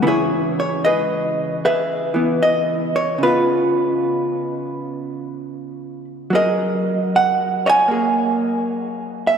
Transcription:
0.02 C#3 E3 B3
0.07 E4 G#4 C#5
0.60 C#5
0.85 G#4 B4 D#5
1.65 G#4 B4 E5
2.14 E3 B3
2.43 D#5
2.96 C#5
3.18 C#3
3.23 B3 D#4 F4 B4
3.27 F4
6.30 F#3
6.35 G#4 A#4 D#5
7.16 F#5
7.66 C#5 D#5 G#5
7.88 A#3 G#4
9.27 E5

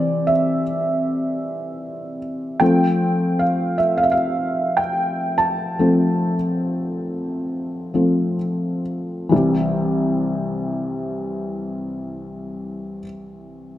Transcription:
Already playing: C3 E3 C4 D5
0.27 E5
2.60 F3 A3 C4 G5
3.39 F5
3.78 E5
3.98 F5
4.03 E5
4.12 F5
4.77 G5
5.38 A5
5.79 F3 A3 C4
7.94 F3 A3 C4
9.29 C2 E3 G3
9.33 C4 G4

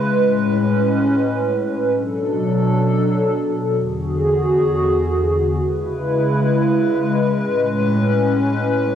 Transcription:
Already playing: G#3 B4
0.11 A2 C#4
1.94 B2 F#3 D4 A4
3.77 E2 D3 F#4 G#4
5.61 C#3 G#3 E4 B4
7.44 A2 C#4

